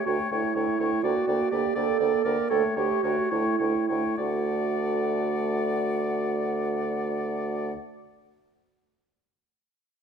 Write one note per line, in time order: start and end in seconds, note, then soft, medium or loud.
0.06 0.18 D2 soft
0.06 0.30 A3 soft
0.06 0.17 F#4 soft
0.06 0.31 C#5 soft
0.06 0.30 G5 soft
0.31 0.42 D2 soft
0.31 0.55 A3 soft
0.31 1.05 E4 medium
0.31 0.55 C#5 soft
0.31 0.55 G5 soft
0.56 0.66 D2 soft
0.56 0.79 A3 soft
0.56 0.79 C#5 soft
0.56 0.79 G5 soft
0.79 0.90 D2 soft
0.79 1.02 A3 soft
0.79 1.03 C#5 soft
0.79 1.03 G5 soft
1.03 1.14 D2 soft
1.03 1.27 A#3 soft
1.03 1.53 F#4 medium
1.03 1.27 D5 soft
1.03 1.26 G5 soft
1.27 1.38 D2 soft
1.27 1.51 A#3 soft
1.27 1.50 D5 soft
1.27 1.50 G5 soft
1.51 1.63 D2 soft
1.51 1.75 A#3 soft
1.51 1.77 G4 medium
1.51 1.75 D5 soft
1.51 1.75 G5 soft
1.75 1.87 D2 soft
1.75 2.00 A#3 soft
1.75 2.27 A4 medium
1.75 1.99 D5 soft
1.75 1.99 G5 soft
2.00 2.12 D2 soft
2.00 2.25 A#3 soft
2.00 2.24 D5 soft
2.00 2.23 G5 soft
2.24 2.36 D2 soft
2.24 2.50 A#3 soft
2.24 2.50 A#4 medium
2.24 2.49 D5 soft
2.24 2.49 G5 soft
2.50 2.62 D2 soft
2.50 2.76 A3 soft
2.50 2.62 A4 medium
2.50 2.76 C#5 soft
2.50 2.75 G5 soft
2.76 2.89 D2 soft
2.76 3.03 A3 soft
2.76 3.05 G4 medium
2.76 3.03 C#5 soft
2.76 3.03 G5 soft
3.03 3.16 D2 soft
3.03 3.30 A3 soft
3.03 3.31 F#4 medium
3.03 3.30 C#5 soft
3.03 3.30 G5 soft
3.31 3.44 D2 soft
3.31 3.59 A3 soft
3.31 4.17 E4 medium
3.31 3.58 C#5 soft
3.31 3.58 G5 soft
3.58 3.74 D2 soft
3.58 3.89 A3 soft
3.58 3.88 C#5 soft
3.58 3.88 G5 soft
3.88 4.03 D2 soft
3.88 4.19 A3 soft
3.88 4.17 C#5 soft
3.88 4.18 G5 soft
4.18 7.73 D2 soft
4.18 7.74 A3 soft
4.18 7.72 F#4 soft
4.18 7.72 D5 soft
4.18 7.72 F#5 soft